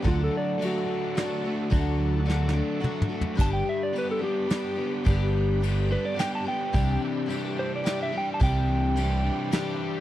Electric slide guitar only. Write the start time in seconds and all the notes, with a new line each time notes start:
0.08 F4
0.24 A4
0.37 D5
0.65 F#4
3.41 A5
3.53 G5
3.69 E5
3.83 D5
3.98 B4
4.11 A4
4.24 G4
5.92 B4
6.05 D5
6.20 G5
6.35 A5
6.48 G5
7.59 C5
7.76 D5
8.03 E5
8.18 G5
8.34 A5
8.43 G5